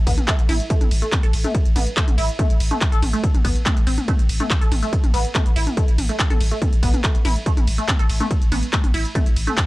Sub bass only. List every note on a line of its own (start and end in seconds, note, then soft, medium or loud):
0.07 0.17 A1 loud
0.39 0.48 A1 medium
0.49 0.60 A1 loud
0.81 0.91 A1 medium
0.91 1.02 A1 loud
1.23 1.33 A1 medium
1.33 1.44 A1 loud
1.65 1.75 A1 medium
1.76 1.86 A1 loud
2.08 2.17 A1 medium
2.18 2.29 A1 loud
2.50 2.60 A1 medium
2.60 2.71 A1 loud
2.92 3.02 A1 medium
3.02 3.13 A1 loud
3.35 3.44 A1 medium
3.45 3.55 A1 loud
3.77 3.86 A1 medium
3.87 3.98 A1 loud
4.19 4.28 A1 medium
4.29 4.40 A1 loud
4.61 4.71 A1 medium
4.71 4.82 A1 loud
5.04 5.13 A1 medium
5.14 5.24 A1 loud
5.46 5.55 A1 medium
5.56 5.67 A1 loud
5.88 5.97 A1 medium
5.98 6.09 A1 loud
6.30 6.40 A1 medium
6.41 6.51 A1 loud
6.73 6.82 A1 medium
6.83 6.93 A1 loud
7.15 7.24 A1 medium
7.25 7.36 A1 loud
7.57 7.67 A1 medium
7.67 7.78 A1 loud
7.99 8.09 A1 medium
8.09 8.20 A1 loud
8.42 8.51 A1 medium
8.52 8.62 A1 loud
8.84 8.93 A1 medium
8.94 9.05 A1 loud
9.26 9.36 A1 medium
9.36 9.47 A1 loud